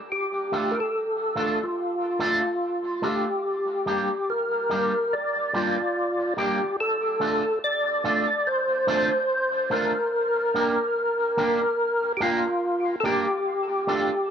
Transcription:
0.12 G4
0.52 A3 D4 F4 A4
0.71 A#4
0.80 A4
1.35 A3 D4 F4 A4
1.62 F4, muted clean electric guitar stroke
2.19 A3 D4 F4 A4
3.02 A3 D4 F4 G4 A4
3.86 G3 A#3 D4 G4
4.30 A#4
4.69 G3 A#3 D4 G4
5.13 D5
5.53 G3 A#3 D4 F4 G4
5.80 muted clean electric guitar stroke
6.37 G3 A#3 D4 G4
6.64 muted clean electric guitar stroke
6.80 A4
7.20 A3 D4 F4 A4
7.64 D5
8.04 A3 D4 F4 A4
8.47 C5
8.87 A3 D4 F4 A4
9.70 A3 D4 F4 A4 A#4
10.54 A#3 D4 G4 A#4
11.37 A#3 D4 G4 A#4
11.63 muted clean electric guitar stroke
12.17 A#3 D4 G4
12.21 F4 G4 A#4
12.47 muted clean electric guitar stroke
13.00 A#3 D4 A4
13.05 G4 A#4
13.87 A3 D4 F4 A4

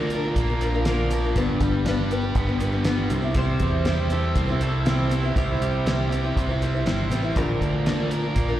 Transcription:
Already playing: D2 A#2 D3 F3 A#3 D4 A#4
0.10 F3 A#3 D4 A#4, closed hi-hat
0.15 A#4
0.24 F3 A#3 D4 A#4
0.35 A#1 A#3, kick, closed hi-hat
0.50 F3 A#3 D4 A#4
0.61 F3 A#3 D4 A#4, closed hi-hat
0.74 F3 A#3 D4 A#4
0.85 A#2 D3 F3 A#3 D4 A#4, snare, closed hi-hat
1.11 F3 A#3 D4 A#4, closed hi-hat
1.24 F3 A#3 D4 A#4
1.36 G1 G2 D3 G3 B3 D4 B4, kick, closed hi-hat
1.60 G1 G3, kick, closed hi-hat
1.86 G2 D3 G3 B3 D4 B4, snare, closed hi-hat
2.11 G3 B3 D4 G4 B4, closed hi-hat
2.23 G3 B3 D4 B4
2.35 G1 B3, kick, closed hi-hat
2.48 G3 B3 D4 B4
2.60 G3 B3 D4 B4, closed hi-hat
2.72 G3 B3 D4 B4
2.85 G2 D3 G3 B3 D4 B4, snare, closed hi-hat
3.09 C2 C3 G3 C4 E4 C5, closed hi-hat
3.22 C4 E4 C5
3.34 C3 G3 C4 E4 C5, kick, closed hi-hat
3.60 E2 G3, kick, closed hi-hat
3.85 C3 G3 C4 E4 C5, snare, closed hi-hat
4.10 G3 C4 E4 G4 A4 C5, closed hi-hat
4.35 C2 C4, kick, closed hi-hat
4.48 C4 E4 C5
4.60 G3 C4 E4 A4 C5, closed hi-hat
4.85 C3 G3 C4 E4 C5, snare, closed hi-hat
5.09 G3 C4 E4 C5, closed hi-hat
5.23 C4 E4 C5
5.36 C2 C3 G3 C4 E4 G4 C5, kick, closed hi-hat
5.51 E4
5.61 C2 G3 G4, closed hi-hat
5.86 C3 G3 C4 E4 C5, snare, closed hi-hat
6.11 G3 C4 E4 G4 C5, closed hi-hat
6.24 C4 E4 C5
6.36 C2 C4, kick, closed hi-hat
6.49 C4 E4 C5
6.61 G3 C4 E4 C5, closed hi-hat
6.74 C4 E4 C5
6.86 G1 C3 G3 C4 E4 C5, snare, closed hi-hat
7.10 A1 G3 C4 E4 C5, closed hi-hat
7.23 C4 E4 C5
7.36 A#1 A#2 D3 F3 A#3 D4 A#4, kick, closed hi-hat
7.61 D2 F3, kick, closed hi-hat
7.86 A#2 D3 F3 A#3 D4 A#4, snare, closed hi-hat
8.11 F3 A#3 D4 A#4, closed hi-hat
8.24 F3 A#3 D4 A#4
8.35 A#1 A#3, kick, closed hi-hat
8.48 F3 A#3 D4 A#4

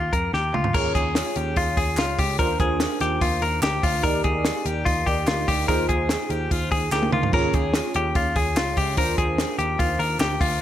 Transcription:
Already playing: F4
0.13 F2 A#4, kick, closed hi-hat
0.33 D#2 G4, snare
0.54 D2 F4, mid tom
0.64 floor tom
0.74 D#2 C#4 F4 G#4 A#4 C#5, kick, crash
0.95 D#2 G#4, kick, hi-hat pedal, open hi-hat
1.15 snare, clap, hi-hat pedal, open hi-hat
1.36 D#2 G4, hi-hat pedal, open hi-hat
1.56 D#2 F4, kick, hi-hat pedal, open hi-hat
1.77 D#2 G#4, kick, hi-hat pedal, open hi-hat
1.97 C#2 F4, snare, clap, hi-hat pedal, open hi-hat
2.18 C#2 G4, kick, hi-hat pedal, open hi-hat
2.38 D#2 D4 F4 A#4 C5, kick, hi-hat pedal, open hi-hat
2.60 D#2 G#4, kick, hi-hat pedal, open hi-hat
2.80 snare, clap, hi-hat pedal, open hi-hat
3.00 D#2 G4, snare, hi-hat pedal, open hi-hat
3.21 D#2 F4, kick, hi-hat pedal, open hi-hat
3.42 D#2 A#4, hi-hat pedal, open hi-hat
3.62 D2 G4, snare, clap, hi-hat pedal, open hi-hat
3.83 D2 F4, kick, hi-hat pedal, open hi-hat
4.02 D#2 D#4 G4 A#4 D5, kick, hi-hat pedal, open hi-hat
4.24 D#2 G#4, kick, hi-hat pedal, open hi-hat
4.45 snare, clap, hi-hat pedal, open hi-hat
4.65 D#2 G4, hi-hat pedal, open hi-hat
4.85 D#2 F4, kick, hi-hat pedal, open hi-hat
5.06 D#2 D#4 G4 A#4 D5, kick, hi-hat pedal, open hi-hat
5.27 D2 F4, snare, clap, hi-hat pedal, open hi-hat
5.48 D2 G4, kick, hi-hat pedal, open hi-hat
5.68 D#2 D#4 F4 G#4 A#4 C5, kick, hi-hat pedal, open hi-hat
5.89 D#2 G#4, kick, hi-hat pedal, open hi-hat
6.09 snare, clap, hi-hat pedal, open hi-hat
6.30 D#2 G4, hi-hat pedal, open hi-hat
6.51 D#2 F4, kick, hi-hat pedal, open hi-hat
6.71 D#2 G#4, kick, hi-hat pedal, open hi-hat
6.91 D2 D#4 F4 G4 G#4 A#4, snare, clap
7.03 high tom
7.12 D2 F4, mid tom
7.23 floor tom
7.33 D#2 C#4 F4 G#4 A#4 C#5, kick, splash
7.53 D#2 G#4, kick, hi-hat pedal, open hi-hat
7.74 snare, clap, hi-hat pedal, open hi-hat
7.94 D#2 G4, hi-hat pedal, open hi-hat
8.15 D#2 F4, kick, hi-hat pedal, open hi-hat
8.36 D#2 G#4, kick, hi-hat pedal, open hi-hat
8.57 C#2 F4, snare, clap, hi-hat pedal, open hi-hat
8.77 C#2 G4, kick, hi-hat pedal, open hi-hat
8.97 D#2 D4 F4 A#4 C5, kick, hi-hat pedal, open hi-hat
9.18 D#2 G#4, kick, hi-hat pedal, open hi-hat
9.38 snare, clap, hi-hat pedal, open hi-hat
9.58 D#2 G4, hi-hat pedal, open hi-hat
9.79 D#2 F4, kick, hi-hat pedal, open hi-hat
9.99 D#2 A#4, hi-hat pedal, open hi-hat
10.19 D2 G4, snare, clap, hi-hat pedal, open hi-hat
10.41 D2 F4, kick, hi-hat pedal, open hi-hat

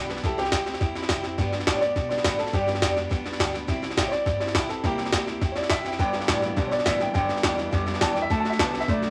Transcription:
Already playing: B1
0.09 G3 B3 D4 G4 B4, snare
0.17 snare
0.24 C2 C3 G3 C4 E4 G4 A4, kick, snare
0.38 C4 E4 G4, snare
0.45 snare
0.52 D2 C3 G3 C4 E4 G4, kick, snare, hi-hat pedal
0.66 C4 E4 G4, snare
0.74 snare
0.80 E2 G3 C4 E4 G4, kick, snare
0.95 C4 E4 G4, snare
1.02 snare
1.09 F2 C3 G3 C4 E4 G4, kick, snare, hi-hat pedal
1.23 C4 E4 G4, snare
1.38 G2 D3 G3 B3 D4 G4, kick, snare
1.53 G3 B3 D4 G4, snare
1.60 snare
1.67 G2 A2 D3 G3 B3 D4 G4, kick, snare, hi-hat pedal
1.77 C#5
1.81 G3 B3 D4 G4 D5, snare
1.96 B2 G3 B3 D4 G4, kick, snare
2.09 G3 B3 D4 G4 D5, snare
2.18 snare
2.24 G2 A2 D3 G3 B3 D4 G4 B4, kick, snare, hi-hat pedal
2.38 G3 B3 D4 G4 A4, snare
2.47 snare
2.53 G2 D3 G3 B3 D4 G4, kick, snare
2.67 G3 B3 D4 G4, snare
2.75 snare
2.81 F2 G2 D3 G3 B3 D4 G4, kick, snare, hi-hat pedal
2.95 G3 B3 D4 G4, snare
3.09 E2 G3 B3 D4 G4, kick, snare
3.24 G3 B3 D4 G4, snare
3.33 snare
3.39 D2 G2 D3 G3 B3 D4 G4, kick, snare, hi-hat pedal
3.53 G3 B3 D4 G4, snare
3.67 C2 C3 G3 C4 E4 G4, kick, snare
3.82 C4 E4 G4, snare
3.91 snare
3.97 A1 C3 G3 C4 E4 G4, kick, snare, hi-hat pedal
4.08 G4 C#5
4.12 C4 E4 D5, muted upright bass stroke, snare
4.25 G1 G3 C4 E4 G4, kick, snare
4.40 C4 E4 G4 D5, snare
4.47 snare
4.55 B1 C3 G3 C4 E4 G4 B4, kick, snare, hi-hat pedal
4.69 C4 E4 G4 A4, muted upright bass stroke, snare
4.84 C2 C3 G3 A#3 C4 E4 G4, kick, snare
4.98 C4 E4 G4, snare
5.05 snare
5.12 D2 C3 G3 C4 E4 G4, kick, snare, hi-hat pedal
5.27 C4 E4 G4, snare
5.41 E2 G3 C4 E4 G4, kick, snare
5.52 C#5, snare
5.56 C4 E4 G4 D5
5.63 snare
5.70 F2 C3 G3 C4 E4 G4 E5, kick, snare, hi-hat pedal
5.84 C4 E4 G4 G5, snare
5.92 snare
5.98 G2 D3 G3 B3 D4 G4 B4 G5, kick, snare
6.13 G3 B3 D4 G4, snare
6.21 snare
6.27 G2 A2 D3 E3 G3 B3 D4 G4, kick, snare, hi-hat pedal
6.42 G3 B3 D4 G4, snare
6.56 G2 B2 D3 G3 B3 D4 G4, kick, snare
6.67 G4 C#5
6.72 G3 B3 D4 D5, snare
6.79 snare
6.85 G2 A2 D3 E3 G3 B3 D4 G4 E5, kick, snare, hi-hat pedal
6.99 G3 B3 D4 G4 G5, snare
7.14 G2 D3 G3 B3 D4 G4 G5, kick, snare
7.28 G3 B3 D4 G4, snare
7.37 snare
7.43 E2 G2 D3 E3 G3 B3 D4 G4, kick, snare, hi-hat pedal
7.57 G3 B3 D4 G4, snare
7.71 F2 G2 D3 G3 B3 D4 G4, kick, snare
7.86 G3 B3 D4 G4, snare
7.94 snare
8.01 E2 G2 D3 E3 G3 B3 D4 G4 A5, kick, snare, hi-hat pedal
8.12 G4 G5, snare
8.17 G3 B3 D4
8.22 E5
8.30 D2 D3 A3 D4 F#4 A4 A5, kick, snare
8.40 A5
8.45 D4 F#4 A4, snare
8.50 E5, snare
8.59 C2 D3 A3 B3 D4 F#4 A4 A5, kick, snare, hi-hat pedal
8.71 A4 A5, snare
8.75 D4 F#4
8.80 E5, snare
8.88 B1 D3 A3 D4 F#4 A4 D5, kick, snare
9.02 D4 F#4 A4, snare

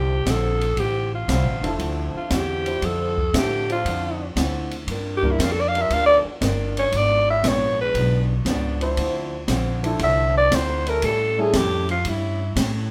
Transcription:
Already playing: C2 D3 F3 C4 D4 E4 G4 A4 C5 E5
0.26 A#1 D3 F3 C4 E4, kick, snare, hi-hat pedal, ride
0.30 A4
0.61 ride
0.77 A1 D3 F3 C4 E4 G4, kick, ride
1.15 F4
1.28 C2 D3 F3 C4 D4 E4 C5, kick, snare, hi-hat pedal, ride
1.44 A1
1.62 F1 F3 C4 D4 E4 A4, ride
1.79 D2 D3 F3 C4 E4, kick, ride
2.14 F4, muted upright bass stroke
2.30 E2 D3 F3 C4 E4, kick, snare, hi-hat pedal, ride
2.35 G4
2.66 F3 D4 E4 C5, ride
2.82 F2 D3 F3 C4 E4 A4, kick, ride
3.18 kick
3.33 A2 D3 F3 C4 D4 E4 A4 E5, kick, snare, hi-hat pedal, ride
3.39 G4
3.69 F3 D4 F4 C5, ride
3.85 F2 D3 F3 C4 E4, kick, ride
4.36 D2 D3 F3 C4 E4, kick, snare, hi-hat pedal, ride
4.71 ride
4.87 G2 F3 A#3, kick, ride
4.91 D4
5.17 G4
5.23 G3 A#3 D4 F4 A#4, kick
5.31 E4
5.39 F2 G2 F3 A#3 D4, kick, snare, hi-hat pedal, ride
5.43 F4
5.52 A4
5.61 D5
5.68 F5
5.74 G3 D4 F4 A#4, ride
5.82 E5
5.90 D2 G2 F3 A#3 D4, kick, ride
5.94 F5
6.06 D5
6.24 muted upright bass stroke
6.41 G1 G2 F3 A#3 D4, kick, snare, hi-hat pedal, ride
6.77 C#5, ride
6.92 G#1 G#2 F3 B3 D4, kick, ride
6.97 D5
7.31 E5
7.43 A#1 G#2 F3 G#3 B3 D4 F4 B4, kick, snare, hi-hat pedal, ride
7.48 C#5
7.81 B4
7.94 B1 G#2 F3 B3 D4, kick, ride
8.45 C#2 G#2 F3 B3 D4, kick, snare, hi-hat pedal, ride
8.81 F3 D4 E4 C5, ride
8.97 D2 D3 F3 C4 E4, kick, ride
9.48 A#1 D3 F3 C4 E4, kick, snare, hi-hat pedal, ride
9.83 F3 C4 D4 E4 A4, ride
9.99 C2 D3 F3 C4 E4 E5, kick, ride
10.38 D5
10.51 D2 D3 F3 C4 E4, kick, snare, hi-hat pedal, ride
10.55 C5
10.86 G3 C#4 E4 A4 A#4, ride
11.02 A2 G3 C#4 E4 A4, kick, ride
11.38 G3 A3 C#4 E4 G#4 A4
11.53 F2 A2 G3 C#4 E4 G4, kick, snare, hi-hat pedal, ride
11.89 F4, ride
12.05 G2 A2 G3 C#4 E4, kick, ride
12.56 A2 G3 C#4 E4, kick, snare, hi-hat pedal, ride

